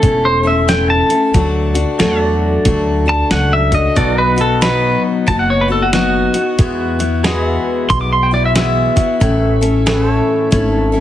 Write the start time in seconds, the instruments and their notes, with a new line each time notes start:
Already playing: pedal steel guitar E4 A4 C#5
0.02 upright bass E1, steel-string acoustic guitar A3 C#4 E4 A4, kick, closed hi-hat
0.25 pedal steel guitar C5
0.43 steel-string acoustic guitar A3 C#4 E4 A4, pedal steel guitar E5
0.68 steel-string acoustic guitar A2 E3 A3 C#4 E4 A4, pedal steel guitar G5, snare, closed hi-hat
0.90 pedal steel guitar A5
1.10 steel-string acoustic guitar A3 C#4 E4 A4, closed hi-hat
1.34 upright bass D2, steel-string acoustic guitar D3 F#3 A3 D4 F#4, kick, closed hi-hat
1.74 steel-string acoustic guitar A3 D4 F#4, closed hi-hat
1.99 upright bass E2, steel-string acoustic guitar D3 F#3 A3 D4 F#4, pedal steel guitar F#4 A4 C#5, snare, closed hi-hat
2.22 pedal steel guitar D5
2.65 upright bass D2, steel-string acoustic guitar F#3 A3 D4 F#4, kick, closed hi-hat
3.06 steel-string acoustic guitar A3 D4 F#4, pedal steel guitar A5
3.31 upright bass C#2, steel-string acoustic guitar F#3 A3 D4 F#4, pedal steel guitar F#5, snare, closed hi-hat
3.53 pedal steel guitar E5
3.72 steel-string acoustic guitar A3 D4 F#4, pedal steel guitar D#5, kick, closed hi-hat
3.96 upright bass B1, steel-string acoustic guitar B2 F#3 B3 D#4 F#4, pedal steel guitar F#4 A4 D5, kick, closed hi-hat
4.18 pedal steel guitar B4 D#5
4.22 pedal steel guitar B4
4.36 steel-string acoustic guitar B3 D#4 F#4, closed hi-hat
4.41 pedal steel guitar A4
4.61 steel-string acoustic guitar B2 F#3 B3 D#4 F#4, pedal steel guitar B4, snare, closed hi-hat
5.26 upright bass F#1, steel-string acoustic guitar F#3 B3 D#4 F#4, pedal steel guitar A5, kick, closed hi-hat
5.39 pedal steel guitar F#5
5.50 pedal steel guitar C#5
5.61 pedal steel guitar B4
5.68 steel-string acoustic guitar B3 D#4 F#4, pedal steel guitar A4
5.82 pedal steel guitar F#4
5.93 steel-string acoustic guitar B2 F#3 B3 D#4 F#4, pedal steel guitar F#4, snare, closed hi-hat
6.34 steel-string acoustic guitar B3 D#4 F#4, closed hi-hat
6.58 upright bass E2, steel-string acoustic guitar E3 G#3 B3 E4 F#4, kick, closed hi-hat
6.99 steel-string acoustic guitar B3 E4 F#4, closed hi-hat
7.24 steel-string acoustic guitar E3 G#3 B3 E4 F#4, pedal steel guitar G#4 B4 D#5, snare, closed hi-hat
7.46 pedal steel guitar E5
7.89 upright bass B1, steel-string acoustic guitar G#3, pedal steel guitar C6, kick, closed hi-hat
8.01 pedal steel guitar D6
8.13 pedal steel guitar C6
8.23 pedal steel guitar G5
8.31 steel-string acoustic guitar B3 E4 F#4, pedal steel guitar D5
8.45 pedal steel guitar E5
8.55 steel-string acoustic guitar E3 G#3 B3 E4 F#4, pedal steel guitar E5, snare, closed hi-hat
8.96 steel-string acoustic guitar B3 E4 F#4, kick, closed hi-hat
9.20 upright bass A1, steel-string acoustic guitar A2 E3 A3 C#4 E4 A4, kick, closed hi-hat
9.61 steel-string acoustic guitar A3 C#4 E4 A4, closed hi-hat
9.86 steel-string acoustic guitar A2 E3 A3 C#4 E4 A4, pedal steel guitar G#4 B4 E5, snare, closed hi-hat
10.07 pedal steel guitar A4
10.13 pedal steel guitar C#5
10.51 upright bass G#1, steel-string acoustic guitar A3 C#4 E4 A4, kick, closed hi-hat
10.92 steel-string acoustic guitar A3 C#4 E4 A4